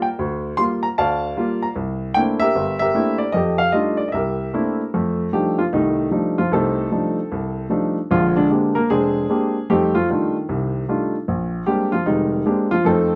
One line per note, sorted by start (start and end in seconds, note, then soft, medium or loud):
0.00 0.14 A#4 medium
0.00 0.14 D5 medium
0.00 0.07 G5 medium
0.19 0.52 D2 medium
0.57 0.84 G3 medium
0.57 0.84 A#3 soft
0.57 0.84 F4 medium
0.57 0.63 C6 loud
0.83 0.88 A#5 medium
0.98 1.32 D2 medium
0.98 1.73 D5 medium
0.98 1.73 F5 medium
0.98 1.34 A5 medium
1.37 1.63 G3 medium
1.37 1.63 A#3 medium
1.37 1.64 F4 medium
1.62 1.67 A#5 medium
1.76 2.10 C2 medium
2.14 2.43 A3 medium
2.14 2.43 A#3 soft
2.14 2.43 C4 medium
2.14 2.43 D4 soft
2.14 2.43 E4 medium
2.14 2.20 G5 loud
2.40 2.80 G4 medium
2.40 2.80 A#4 medium
2.40 2.78 E5 loud
2.55 2.89 G1 medium
2.79 3.31 G4 medium
2.79 3.31 A#4 medium
2.79 3.17 E5 loud
2.94 3.21 A3 medium
2.94 3.21 A#3 medium
2.94 3.22 C4 soft
2.94 3.22 D4 medium
2.94 3.22 E4 medium
3.18 3.34 D5 medium
3.32 3.68 F2 medium
3.32 4.11 G4 medium
3.32 4.10 A4 medium
3.32 3.60 D#5 medium
3.58 3.72 F5 medium
3.72 4.01 G3 soft
3.72 4.01 A3 soft
3.72 4.01 D4 soft
3.72 4.01 D#4 soft
3.72 4.01 F4 medium
3.72 3.99 D#5 medium
3.97 4.08 D5 medium
4.08 4.13 D#5 medium
4.12 4.48 C2 medium
4.12 4.90 G4 medium
4.12 4.89 A#4 medium
4.12 4.74 E5 medium
4.53 4.80 A3 medium
4.53 4.80 A#3 medium
4.53 4.80 C4 soft
4.53 4.81 D4 soft
4.53 4.81 E4 medium
4.94 5.28 F2 medium
4.94 5.28 A3 medium
5.33 5.59 F3 medium
5.33 5.60 G3 soft
5.33 5.60 A3 soft
5.33 5.60 D4 soft
5.33 5.60 D#4 medium
5.33 5.59 G4 medium
5.59 5.65 F3 medium
5.59 5.64 F4 medium
5.73 6.07 C2 medium
5.73 6.10 D#3 medium
5.73 6.10 G3 medium
5.73 6.10 A3 medium
5.73 6.09 D#4 medium
6.11 6.38 F3 medium
6.11 6.38 G3 medium
6.11 6.39 A3 medium
6.11 6.39 D4 soft
6.11 6.39 D#4 medium
6.38 6.52 F3 medium
6.38 6.52 F4 medium
6.52 6.86 C2 medium
6.52 6.86 C3 medium
6.52 6.91 A3 medium
6.52 7.93 C4 medium
6.52 6.91 D#4 medium
6.52 7.92 A4 medium
6.92 7.18 F3 medium
6.92 7.18 G3 soft
6.92 7.19 A3 soft
6.92 7.19 D4 soft
6.92 7.19 D#4 medium
7.32 7.65 C2 medium
7.70 7.97 F3 medium
7.70 7.97 G3 medium
7.70 7.97 A3 medium
7.70 7.97 D4 medium
7.70 7.97 D#4 medium
8.11 8.44 A#1 medium
8.11 8.35 D3 medium
8.11 8.34 F3 medium
8.11 8.34 G#3 medium
8.11 8.34 D4 medium
8.11 8.37 F4 medium
8.36 8.73 D3 medium
8.36 8.49 G#3 medium
8.36 8.50 D4 medium
8.51 8.77 G#3 medium
8.51 8.74 A#3 soft
8.51 8.77 C4 soft
8.51 8.77 D4 soft
8.51 8.77 G4 medium
8.75 8.89 A#3 medium
8.75 8.88 A#4 medium
8.90 9.24 F1 medium
8.90 9.28 G#3 medium
8.90 9.28 C4 medium
8.90 9.29 D4 medium
8.90 9.71 G#4 loud
9.29 9.56 G#3 medium
9.29 9.56 A#3 medium
9.29 9.56 C4 soft
9.29 9.56 D4 medium
9.29 9.56 G4 medium
9.70 10.03 F2 medium
9.70 9.93 G3 medium
9.70 10.03 A3 medium
9.70 9.93 C4 medium
9.70 9.93 D#4 medium
9.70 9.93 G4 medium
9.95 10.08 F3 medium
9.95 10.09 F4 medium
10.09 11.10 D#3 medium
10.09 10.35 G3 medium
10.09 10.35 A3 soft
10.09 10.36 D4 soft
10.09 10.36 D#4 soft
10.09 10.36 F4 medium
10.49 10.82 C2 medium
10.49 10.83 C3 medium
10.88 11.15 G3 medium
10.88 11.15 A3 soft
10.88 11.15 D4 medium
10.88 11.15 D#4 soft
10.88 11.15 F4 medium
11.28 11.62 A#1 medium
11.66 11.91 G3 medium
11.66 11.93 G#3 medium
11.66 11.94 A#3 soft
11.66 11.93 C4 soft
11.66 11.94 D4 soft
11.66 11.92 G4 medium
11.92 12.06 F3 medium
11.92 12.07 F4 medium
12.06 12.40 F1 medium
12.06 12.43 D#3 medium
12.06 12.43 G3 medium
12.06 12.43 G#3 medium
12.06 12.43 D#4 medium
12.46 12.72 G#3 medium
12.46 12.72 A#3 soft
12.46 12.73 C4 medium
12.46 12.73 D4 medium
12.46 12.73 G4 medium
12.71 12.85 F3 medium
12.71 12.86 F4 medium
12.85 13.15 F2 medium
12.85 13.15 A3 medium
12.85 13.15 C4 medium
12.85 13.15 D#4 medium
12.85 13.15 A4 medium